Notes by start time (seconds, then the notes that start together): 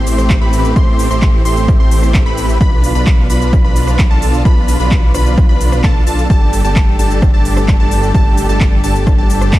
Already playing: A1 E3 A3 C4 E4 G4 C5 C6, impact
0.07 open hi-hat, shaker
0.18 cross-stick, shaker
0.30 kick, clap, shaker
0.41 A1 A3 C4 E4 G4 B4 B5
0.53 open hi-hat, shaker
0.65 shaker
0.76 A1 A3 C4 E4 G4 C6, kick, shaker
0.99 open hi-hat, shaker
1.11 A1 A3 C4 E4 G4 C5 C6, shaker
1.22 kick, clap, shaker
1.45 A1 A3 C4 E4 G4 C5 C6, open hi-hat, shaker
1.57 shaker
1.68 kick, cross-stick, shaker
1.80 A1 A3 C4 E4 G4 C5 C6
1.91 open hi-hat, shaker
2.03 cross-stick, shaker
2.14 kick, clap, shaker
2.26 A1 A3 C4 E4 G4 B4 B5
2.38 open hi-hat, shaker
2.49 shaker
2.61 B1 D3 F3 B3 D4 F4 B5, kick, shaker
2.84 open hi-hat, shaker
2.95 B1 D4 F4 B4 B5, shaker
3.07 kick, clap, shaker
3.30 B1 D4 F4 B4 B5, open hi-hat, shaker
3.42 shaker
3.53 kick, cross-stick, shaker
3.65 B1 D4 F4 B4 B5
3.76 open hi-hat, shaker
3.88 cross-stick, shaker
3.99 kick, clap, shaker
4.11 B1 D4 F4 A4 A5
4.22 open hi-hat, shaker
4.34 shaker
4.45 B1 D4 F4 B4 B5, kick, shaker
4.68 open hi-hat, shaker
4.80 B1 D4 F4 B4 B5, shaker
4.91 kick, clap, shaker
5.14 B1 D4 F4 B4 B5, cross-stick, open hi-hat, shaker
5.26 shaker
5.38 kick, cross-stick, shaker
5.49 B1 D4 F4 B4 B5
5.61 open hi-hat, shaker
5.72 cross-stick, shaker
5.84 B1 D4 F4 A4 A5, kick, clap, shaker
6.07 B1 D4 F4 A4 A5, open hi-hat, shaker
6.19 shaker
6.30 G1 G3 A3 D4 G4 A4 A5, kick, shaker
6.53 open hi-hat, shaker
6.64 G1 D4 G4 A4 A5, shaker
6.76 kick, clap, shaker
6.99 G1 D4 G4 A4 A5, open hi-hat, shaker
7.11 shaker
7.22 kick, cross-stick, shaker
7.34 G1 D4 G4 A4 A5
7.45 open hi-hat, shaker
7.57 cross-stick, shaker
7.68 kick, clap, shaker
7.80 G1 D4 G4 A4 A5
7.91 open hi-hat, shaker
8.03 shaker
8.15 G1 D4 G4 A4 A5, kick, shaker
8.38 open hi-hat, shaker
8.49 G1 D4 G4 A4 A5, shaker
8.61 kick, clap, shaker
8.84 G1 D4 G4 A4 A5, open hi-hat, shaker
8.95 shaker
9.07 kick, cross-stick, shaker
9.18 G1 D4 G4 A4 A5
9.30 open hi-hat, shaker
9.41 cross-stick, shaker
9.53 kick, clap, shaker